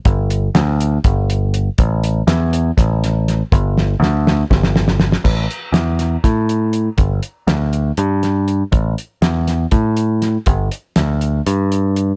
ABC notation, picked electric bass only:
X:1
M:7/8
L:1/8
Q:1/4=121
K:Glyd
V:1 name="Picked electric bass" clef=bass
G,,,2 D,,2 G,,,3 | A,,,2 E,,2 A,,,3 | G,,,2 D,,2 G,,,3 | A,,, z E,,2 A,,3 |
G,,, z D,,2 G,,3 | A,,, z E,,2 A,,3 | G,,, z D,,2 G,,3 |]